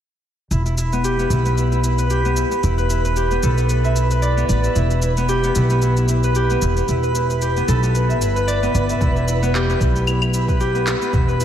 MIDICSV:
0, 0, Header, 1, 5, 480
1, 0, Start_track
1, 0, Key_signature, 1, "minor"
1, 0, Tempo, 530973
1, 463, Time_signature, 4, 2, 24, 8
1, 10348, End_track
2, 0, Start_track
2, 0, Title_t, "Synth texture"
2, 0, Program_c, 0, 99
2, 464, Note_on_c, 0, 71, 80
2, 10348, Note_off_c, 0, 71, 0
2, 10348, End_track
3, 0, Start_track
3, 0, Title_t, "Harp"
3, 0, Program_c, 1, 46
3, 461, Note_on_c, 1, 64, 66
3, 592, Note_off_c, 1, 64, 0
3, 595, Note_on_c, 1, 64, 64
3, 701, Note_off_c, 1, 64, 0
3, 704, Note_on_c, 1, 64, 62
3, 839, Note_on_c, 1, 59, 85
3, 943, Note_on_c, 1, 67, 85
3, 1074, Note_off_c, 1, 59, 0
3, 1078, Note_on_c, 1, 59, 85
3, 1178, Note_off_c, 1, 64, 0
3, 1181, Note_on_c, 1, 64, 63
3, 1311, Note_off_c, 1, 59, 0
3, 1314, Note_on_c, 1, 59, 69
3, 1418, Note_off_c, 1, 64, 0
3, 1422, Note_on_c, 1, 64, 67
3, 1550, Note_off_c, 1, 64, 0
3, 1553, Note_on_c, 1, 64, 63
3, 1657, Note_off_c, 1, 64, 0
3, 1661, Note_on_c, 1, 64, 67
3, 1794, Note_on_c, 1, 71, 66
3, 1897, Note_off_c, 1, 67, 0
3, 1901, Note_on_c, 1, 67, 85
3, 2032, Note_off_c, 1, 59, 0
3, 2035, Note_on_c, 1, 59, 89
3, 2133, Note_off_c, 1, 64, 0
3, 2137, Note_on_c, 1, 64, 61
3, 2267, Note_off_c, 1, 59, 0
3, 2270, Note_on_c, 1, 59, 63
3, 2374, Note_off_c, 1, 64, 0
3, 2378, Note_on_c, 1, 64, 72
3, 2508, Note_off_c, 1, 71, 0
3, 2511, Note_on_c, 1, 71, 69
3, 2617, Note_off_c, 1, 64, 0
3, 2620, Note_on_c, 1, 64, 69
3, 2751, Note_off_c, 1, 71, 0
3, 2754, Note_on_c, 1, 71, 69
3, 2859, Note_off_c, 1, 67, 0
3, 2862, Note_on_c, 1, 67, 74
3, 2991, Note_off_c, 1, 59, 0
3, 2995, Note_on_c, 1, 59, 86
3, 3101, Note_on_c, 1, 69, 94
3, 3229, Note_off_c, 1, 59, 0
3, 3233, Note_on_c, 1, 59, 73
3, 3335, Note_off_c, 1, 71, 0
3, 3339, Note_on_c, 1, 71, 69
3, 3474, Note_on_c, 1, 76, 63
3, 3577, Note_off_c, 1, 64, 0
3, 3580, Note_on_c, 1, 64, 67
3, 3708, Note_off_c, 1, 71, 0
3, 3712, Note_on_c, 1, 71, 66
3, 3815, Note_on_c, 1, 74, 88
3, 3946, Note_off_c, 1, 59, 0
3, 3950, Note_on_c, 1, 59, 90
3, 4051, Note_off_c, 1, 74, 0
3, 4054, Note_on_c, 1, 74, 64
3, 4189, Note_off_c, 1, 76, 0
3, 4192, Note_on_c, 1, 76, 62
3, 4297, Note_off_c, 1, 64, 0
3, 4301, Note_on_c, 1, 64, 72
3, 4435, Note_off_c, 1, 64, 0
3, 4438, Note_on_c, 1, 64, 67
3, 4543, Note_off_c, 1, 64, 0
3, 4547, Note_on_c, 1, 64, 63
3, 4674, Note_off_c, 1, 59, 0
3, 4678, Note_on_c, 1, 59, 88
3, 4776, Note_off_c, 1, 67, 0
3, 4780, Note_on_c, 1, 67, 93
3, 4915, Note_off_c, 1, 59, 0
3, 4919, Note_on_c, 1, 59, 86
3, 5022, Note_off_c, 1, 64, 0
3, 5026, Note_on_c, 1, 64, 69
3, 5086, Note_off_c, 1, 69, 0
3, 5155, Note_off_c, 1, 59, 0
3, 5158, Note_on_c, 1, 59, 68
3, 5260, Note_off_c, 1, 64, 0
3, 5264, Note_on_c, 1, 64, 71
3, 5396, Note_off_c, 1, 64, 0
3, 5400, Note_on_c, 1, 64, 63
3, 5502, Note_off_c, 1, 64, 0
3, 5506, Note_on_c, 1, 64, 64
3, 5564, Note_off_c, 1, 71, 0
3, 5641, Note_on_c, 1, 71, 70
3, 5724, Note_off_c, 1, 74, 0
3, 5744, Note_off_c, 1, 67, 0
3, 5748, Note_on_c, 1, 67, 92
3, 5750, Note_off_c, 1, 76, 0
3, 5879, Note_off_c, 1, 59, 0
3, 5882, Note_on_c, 1, 59, 87
3, 5985, Note_off_c, 1, 64, 0
3, 5989, Note_on_c, 1, 64, 61
3, 6116, Note_off_c, 1, 59, 0
3, 6119, Note_on_c, 1, 59, 62
3, 6223, Note_off_c, 1, 64, 0
3, 6226, Note_on_c, 1, 64, 68
3, 6354, Note_off_c, 1, 71, 0
3, 6358, Note_on_c, 1, 71, 71
3, 6460, Note_off_c, 1, 64, 0
3, 6464, Note_on_c, 1, 64, 67
3, 6594, Note_off_c, 1, 71, 0
3, 6597, Note_on_c, 1, 71, 67
3, 6704, Note_off_c, 1, 67, 0
3, 6707, Note_on_c, 1, 67, 75
3, 6837, Note_off_c, 1, 59, 0
3, 6840, Note_on_c, 1, 59, 85
3, 6944, Note_on_c, 1, 69, 91
3, 7076, Note_off_c, 1, 59, 0
3, 7080, Note_on_c, 1, 59, 66
3, 7179, Note_off_c, 1, 71, 0
3, 7183, Note_on_c, 1, 71, 69
3, 7316, Note_on_c, 1, 76, 64
3, 7418, Note_off_c, 1, 64, 0
3, 7422, Note_on_c, 1, 64, 70
3, 7553, Note_off_c, 1, 71, 0
3, 7557, Note_on_c, 1, 71, 70
3, 7662, Note_on_c, 1, 74, 89
3, 7796, Note_off_c, 1, 59, 0
3, 7799, Note_on_c, 1, 59, 91
3, 7904, Note_off_c, 1, 74, 0
3, 7908, Note_on_c, 1, 74, 65
3, 8041, Note_off_c, 1, 76, 0
3, 8045, Note_on_c, 1, 76, 64
3, 8146, Note_off_c, 1, 64, 0
3, 8150, Note_on_c, 1, 64, 74
3, 8277, Note_off_c, 1, 64, 0
3, 8281, Note_on_c, 1, 64, 67
3, 8386, Note_off_c, 1, 64, 0
3, 8389, Note_on_c, 1, 64, 67
3, 8516, Note_off_c, 1, 59, 0
3, 8520, Note_on_c, 1, 59, 92
3, 8626, Note_off_c, 1, 67, 0
3, 8630, Note_on_c, 1, 67, 92
3, 8759, Note_off_c, 1, 59, 0
3, 8763, Note_on_c, 1, 59, 88
3, 8864, Note_off_c, 1, 64, 0
3, 8868, Note_on_c, 1, 64, 66
3, 8930, Note_off_c, 1, 69, 0
3, 8998, Note_off_c, 1, 59, 0
3, 9002, Note_on_c, 1, 59, 70
3, 9104, Note_off_c, 1, 64, 0
3, 9107, Note_on_c, 1, 64, 74
3, 9239, Note_off_c, 1, 64, 0
3, 9242, Note_on_c, 1, 64, 62
3, 9345, Note_off_c, 1, 64, 0
3, 9349, Note_on_c, 1, 64, 69
3, 9409, Note_off_c, 1, 71, 0
3, 9481, Note_on_c, 1, 71, 72
3, 9577, Note_off_c, 1, 74, 0
3, 9581, Note_off_c, 1, 67, 0
3, 9585, Note_on_c, 1, 67, 89
3, 9603, Note_off_c, 1, 76, 0
3, 9712, Note_off_c, 1, 59, 0
3, 9716, Note_on_c, 1, 59, 84
3, 9820, Note_off_c, 1, 64, 0
3, 9824, Note_on_c, 1, 64, 62
3, 9953, Note_off_c, 1, 59, 0
3, 9957, Note_on_c, 1, 59, 65
3, 10062, Note_off_c, 1, 64, 0
3, 10065, Note_on_c, 1, 64, 74
3, 10193, Note_off_c, 1, 71, 0
3, 10197, Note_on_c, 1, 71, 67
3, 10302, Note_off_c, 1, 64, 0
3, 10306, Note_on_c, 1, 64, 67
3, 10348, Note_off_c, 1, 59, 0
3, 10348, Note_off_c, 1, 64, 0
3, 10348, Note_off_c, 1, 67, 0
3, 10348, Note_off_c, 1, 71, 0
3, 10348, End_track
4, 0, Start_track
4, 0, Title_t, "Upright bass"
4, 0, Program_c, 2, 32
4, 459, Note_on_c, 2, 28, 84
4, 1114, Note_off_c, 2, 28, 0
4, 1175, Note_on_c, 2, 35, 87
4, 2189, Note_off_c, 2, 35, 0
4, 2381, Note_on_c, 2, 28, 88
4, 3036, Note_off_c, 2, 28, 0
4, 3101, Note_on_c, 2, 35, 84
4, 3995, Note_off_c, 2, 35, 0
4, 4060, Note_on_c, 2, 33, 86
4, 4218, Note_off_c, 2, 33, 0
4, 4299, Note_on_c, 2, 28, 87
4, 4955, Note_off_c, 2, 28, 0
4, 5024, Note_on_c, 2, 35, 87
4, 5917, Note_off_c, 2, 35, 0
4, 5983, Note_on_c, 2, 28, 87
4, 6140, Note_off_c, 2, 28, 0
4, 6222, Note_on_c, 2, 28, 87
4, 6876, Note_off_c, 2, 28, 0
4, 6945, Note_on_c, 2, 35, 87
4, 7424, Note_off_c, 2, 35, 0
4, 7424, Note_on_c, 2, 31, 73
4, 7837, Note_off_c, 2, 31, 0
4, 7905, Note_on_c, 2, 31, 82
4, 8061, Note_off_c, 2, 31, 0
4, 8144, Note_on_c, 2, 28, 91
4, 8797, Note_off_c, 2, 28, 0
4, 8863, Note_on_c, 2, 35, 89
4, 9873, Note_off_c, 2, 35, 0
4, 10063, Note_on_c, 2, 28, 87
4, 10348, Note_off_c, 2, 28, 0
4, 10348, End_track
5, 0, Start_track
5, 0, Title_t, "Drums"
5, 463, Note_on_c, 9, 69, 37
5, 554, Note_off_c, 9, 69, 0
5, 597, Note_on_c, 9, 69, 20
5, 687, Note_off_c, 9, 69, 0
5, 702, Note_on_c, 9, 69, 71
5, 793, Note_off_c, 9, 69, 0
5, 837, Note_on_c, 9, 69, 29
5, 927, Note_off_c, 9, 69, 0
5, 943, Note_on_c, 9, 69, 41
5, 1034, Note_off_c, 9, 69, 0
5, 1078, Note_on_c, 9, 69, 20
5, 1168, Note_off_c, 9, 69, 0
5, 1181, Note_on_c, 9, 69, 66
5, 1271, Note_off_c, 9, 69, 0
5, 1316, Note_on_c, 9, 69, 30
5, 1406, Note_off_c, 9, 69, 0
5, 1425, Note_on_c, 9, 69, 39
5, 1515, Note_off_c, 9, 69, 0
5, 1557, Note_on_c, 9, 69, 19
5, 1647, Note_off_c, 9, 69, 0
5, 1662, Note_on_c, 9, 69, 67
5, 1753, Note_off_c, 9, 69, 0
5, 1793, Note_on_c, 9, 69, 30
5, 1884, Note_off_c, 9, 69, 0
5, 1899, Note_on_c, 9, 69, 36
5, 1990, Note_off_c, 9, 69, 0
5, 2034, Note_on_c, 9, 69, 17
5, 2125, Note_off_c, 9, 69, 0
5, 2139, Note_on_c, 9, 69, 69
5, 2229, Note_off_c, 9, 69, 0
5, 2273, Note_on_c, 9, 69, 30
5, 2363, Note_off_c, 9, 69, 0
5, 2380, Note_on_c, 9, 69, 42
5, 2471, Note_off_c, 9, 69, 0
5, 2516, Note_on_c, 9, 69, 20
5, 2606, Note_off_c, 9, 69, 0
5, 2621, Note_on_c, 9, 69, 77
5, 2711, Note_off_c, 9, 69, 0
5, 2756, Note_on_c, 9, 69, 30
5, 2847, Note_off_c, 9, 69, 0
5, 2859, Note_on_c, 9, 69, 44
5, 2949, Note_off_c, 9, 69, 0
5, 2992, Note_on_c, 9, 69, 20
5, 3082, Note_off_c, 9, 69, 0
5, 3100, Note_on_c, 9, 69, 71
5, 3190, Note_off_c, 9, 69, 0
5, 3234, Note_on_c, 9, 69, 30
5, 3325, Note_off_c, 9, 69, 0
5, 3339, Note_on_c, 9, 69, 40
5, 3429, Note_off_c, 9, 69, 0
5, 3475, Note_on_c, 9, 69, 19
5, 3566, Note_off_c, 9, 69, 0
5, 3579, Note_on_c, 9, 69, 72
5, 3669, Note_off_c, 9, 69, 0
5, 3713, Note_on_c, 9, 69, 30
5, 3803, Note_off_c, 9, 69, 0
5, 3819, Note_on_c, 9, 69, 38
5, 3909, Note_off_c, 9, 69, 0
5, 3957, Note_on_c, 9, 69, 20
5, 4047, Note_off_c, 9, 69, 0
5, 4060, Note_on_c, 9, 69, 63
5, 4151, Note_off_c, 9, 69, 0
5, 4194, Note_on_c, 9, 69, 31
5, 4284, Note_off_c, 9, 69, 0
5, 4300, Note_on_c, 9, 69, 41
5, 4390, Note_off_c, 9, 69, 0
5, 4434, Note_on_c, 9, 69, 19
5, 4525, Note_off_c, 9, 69, 0
5, 4539, Note_on_c, 9, 69, 79
5, 4630, Note_off_c, 9, 69, 0
5, 4674, Note_on_c, 9, 69, 32
5, 4765, Note_off_c, 9, 69, 0
5, 4779, Note_on_c, 9, 69, 41
5, 4870, Note_off_c, 9, 69, 0
5, 4914, Note_on_c, 9, 69, 21
5, 5005, Note_off_c, 9, 69, 0
5, 5019, Note_on_c, 9, 69, 74
5, 5110, Note_off_c, 9, 69, 0
5, 5152, Note_on_c, 9, 69, 30
5, 5243, Note_off_c, 9, 69, 0
5, 5260, Note_on_c, 9, 69, 43
5, 5350, Note_off_c, 9, 69, 0
5, 5394, Note_on_c, 9, 69, 21
5, 5485, Note_off_c, 9, 69, 0
5, 5500, Note_on_c, 9, 69, 74
5, 5591, Note_off_c, 9, 69, 0
5, 5635, Note_on_c, 9, 69, 29
5, 5725, Note_off_c, 9, 69, 0
5, 5741, Note_on_c, 9, 69, 41
5, 5831, Note_off_c, 9, 69, 0
5, 5876, Note_on_c, 9, 69, 19
5, 5966, Note_off_c, 9, 69, 0
5, 5982, Note_on_c, 9, 69, 71
5, 6073, Note_off_c, 9, 69, 0
5, 6117, Note_on_c, 9, 69, 29
5, 6208, Note_off_c, 9, 69, 0
5, 6222, Note_on_c, 9, 69, 39
5, 6313, Note_off_c, 9, 69, 0
5, 6358, Note_on_c, 9, 69, 20
5, 6448, Note_off_c, 9, 69, 0
5, 6465, Note_on_c, 9, 69, 74
5, 6555, Note_off_c, 9, 69, 0
5, 6600, Note_on_c, 9, 69, 30
5, 6691, Note_off_c, 9, 69, 0
5, 6705, Note_on_c, 9, 69, 41
5, 6795, Note_off_c, 9, 69, 0
5, 6839, Note_on_c, 9, 69, 21
5, 6930, Note_off_c, 9, 69, 0
5, 6945, Note_on_c, 9, 69, 70
5, 7036, Note_off_c, 9, 69, 0
5, 7080, Note_on_c, 9, 69, 29
5, 7171, Note_off_c, 9, 69, 0
5, 7186, Note_on_c, 9, 69, 39
5, 7277, Note_off_c, 9, 69, 0
5, 7324, Note_on_c, 9, 69, 20
5, 7414, Note_off_c, 9, 69, 0
5, 7427, Note_on_c, 9, 69, 71
5, 7517, Note_off_c, 9, 69, 0
5, 7561, Note_on_c, 9, 69, 28
5, 7651, Note_off_c, 9, 69, 0
5, 7668, Note_on_c, 9, 69, 41
5, 7758, Note_off_c, 9, 69, 0
5, 7802, Note_on_c, 9, 69, 20
5, 7892, Note_off_c, 9, 69, 0
5, 7908, Note_on_c, 9, 69, 68
5, 7999, Note_off_c, 9, 69, 0
5, 8040, Note_on_c, 9, 69, 32
5, 8130, Note_off_c, 9, 69, 0
5, 8144, Note_on_c, 9, 36, 101
5, 8147, Note_on_c, 9, 69, 39
5, 8234, Note_off_c, 9, 36, 0
5, 8238, Note_off_c, 9, 69, 0
5, 8283, Note_on_c, 9, 69, 20
5, 8374, Note_off_c, 9, 69, 0
5, 8389, Note_on_c, 9, 69, 75
5, 8480, Note_off_c, 9, 69, 0
5, 8524, Note_on_c, 9, 69, 31
5, 8615, Note_off_c, 9, 69, 0
5, 8633, Note_on_c, 9, 39, 67
5, 8634, Note_on_c, 9, 69, 39
5, 8724, Note_off_c, 9, 39, 0
5, 8724, Note_off_c, 9, 69, 0
5, 8767, Note_on_c, 9, 69, 21
5, 8857, Note_off_c, 9, 69, 0
5, 8863, Note_on_c, 9, 36, 93
5, 8868, Note_on_c, 9, 69, 70
5, 8954, Note_off_c, 9, 36, 0
5, 8958, Note_off_c, 9, 69, 0
5, 9002, Note_on_c, 9, 69, 30
5, 9092, Note_off_c, 9, 69, 0
5, 9106, Note_on_c, 9, 75, 70
5, 9107, Note_on_c, 9, 69, 40
5, 9197, Note_off_c, 9, 69, 0
5, 9197, Note_off_c, 9, 75, 0
5, 9238, Note_on_c, 9, 75, 70
5, 9239, Note_on_c, 9, 69, 20
5, 9329, Note_off_c, 9, 69, 0
5, 9329, Note_off_c, 9, 75, 0
5, 9344, Note_on_c, 9, 69, 72
5, 9435, Note_off_c, 9, 69, 0
5, 9477, Note_on_c, 9, 36, 99
5, 9481, Note_on_c, 9, 69, 29
5, 9568, Note_off_c, 9, 36, 0
5, 9571, Note_off_c, 9, 69, 0
5, 9585, Note_on_c, 9, 69, 41
5, 9675, Note_off_c, 9, 69, 0
5, 9719, Note_on_c, 9, 69, 19
5, 9810, Note_off_c, 9, 69, 0
5, 9823, Note_on_c, 9, 39, 65
5, 9824, Note_on_c, 9, 69, 70
5, 9914, Note_off_c, 9, 39, 0
5, 9914, Note_off_c, 9, 69, 0
5, 9960, Note_on_c, 9, 69, 30
5, 10050, Note_off_c, 9, 69, 0
5, 10063, Note_on_c, 9, 36, 107
5, 10066, Note_on_c, 9, 69, 36
5, 10153, Note_off_c, 9, 36, 0
5, 10156, Note_off_c, 9, 69, 0
5, 10203, Note_on_c, 9, 69, 19
5, 10293, Note_off_c, 9, 69, 0
5, 10308, Note_on_c, 9, 69, 70
5, 10348, Note_off_c, 9, 69, 0
5, 10348, End_track
0, 0, End_of_file